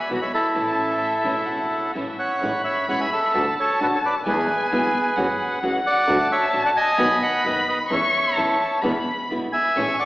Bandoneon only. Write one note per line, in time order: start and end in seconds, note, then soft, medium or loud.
0.22 0.32 C#5 medium
0.22 0.32 E5 medium
0.34 1.91 E4 medium
0.34 1.91 A4 medium
2.19 2.62 C#5 medium
2.19 2.62 F#5 medium
2.64 2.86 C#5 medium
2.64 2.86 E5 medium
2.89 2.99 C#5 medium
2.89 3.00 F#5 loud
3.00 3.11 E5 medium
3.00 3.11 G#5 loud
3.12 3.55 A4 medium
3.12 3.54 E5 medium
3.60 3.80 A4 medium
3.60 3.80 C#5 loud
3.82 3.87 F#4 medium
3.82 3.87 B4 medium
3.95 3.99 A4 medium
3.95 3.99 C#5 medium
4.05 4.15 B4 medium
4.05 4.15 D5 medium
4.29 5.59 G#4 medium
4.29 5.59 B4 medium
5.86 6.28 D5 medium
5.86 6.32 F#5 loud
6.32 6.63 C#5 medium
6.32 6.63 E5 medium
6.66 6.71 D5 medium
6.66 6.70 F#5 loud
6.77 7.18 D#5 loud
6.77 7.23 G#5 loud
7.22 7.43 D#5 medium
7.22 7.45 F#5 loud
7.46 7.67 B4 medium
7.46 7.67 D#5 medium
7.68 7.79 B4 medium
7.68 7.78 D#5 medium
7.93 8.80 C#5 medium
7.93 8.80 E5 medium
9.52 9.96 E5 medium
9.52 10.00 G#5 loud
9.99 10.05 D5 medium
9.99 10.05 F#5 medium